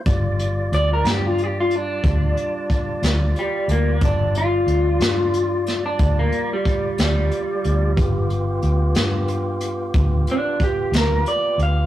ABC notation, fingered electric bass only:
X:1
M:12/8
L:1/8
Q:3/8=61
K:Gmix
V:1 name="Fingered electric bass" clef=bass
G,,,2 D,, G,,3 D,, z2 D,, z D,, | G,,,2 D,, G,,3 D,, z2 D,, z D,, | G,,,2 D,, G,,3 D,, z2 D,, z D,, |]